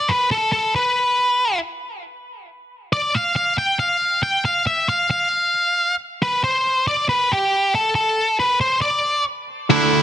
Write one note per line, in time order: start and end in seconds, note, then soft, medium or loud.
0.09 0.31 B4 medium
0.31 0.51 A4 medium
0.52 0.75 A4 medium
0.76 1.59 B4 medium
2.93 3.16 D5 medium
3.15 3.35 F5 medium
3.36 3.58 F5 medium
3.58 3.79 G5 loud
3.79 4.22 F5 medium
4.23 4.45 G5 medium
4.45 4.66 F5 medium
4.67 4.89 E5 medium
4.89 5.09 F5 medium
5.11 5.95 F5 medium
6.23 6.43 B4 medium
6.44 6.87 C5 medium
6.87 7.09 D5 loud
7.09 7.31 B4 medium
7.32 7.75 G4 medium
7.75 7.94 A4 medium
7.95 8.36 A4 medium
8.40 8.60 B4 medium
8.61 8.81 C5 medium
8.81 9.23 D5 medium
9.70 10.03 D3 loud
9.70 10.03 A3 medium
9.70 10.03 D4 loud
9.70 10.03 E4 medium
9.70 10.03 E5 medium